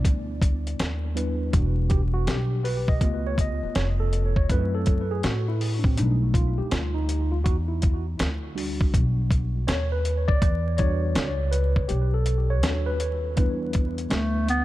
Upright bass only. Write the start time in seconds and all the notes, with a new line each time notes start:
0.05 D2
0.80 D#2
1.53 E1
2.27 B1
3.01 C#2
3.63 muted upright bass stroke
3.76 F1
4.50 F#2
5.24 A2
5.98 B1
6.59 muted upright bass stroke
6.72 D2
7.46 E2
8.20 D2
8.94 B1
9.68 D#2
10.42 E2
11.15 C#2
11.90 B1
12.63 D#2
13.38 E2
14.12 D2